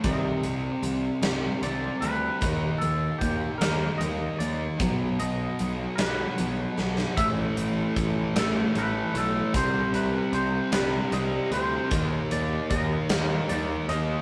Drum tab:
HH |x-x-x-x-x-x-|x-x-x-x-x-x-|x-x-x-x-x---|x-x-x-x-x-x-|
SD |------o-----|------o-----|------o---oo|------o-----|
BD |o-----------|o---o-------|o-----------|o---o-------|

HH |x-x-x-x-x-x-|x-x-x-x-x-x-|
SD |------o-----|------o-----|
BD |o-----------|o---o-------|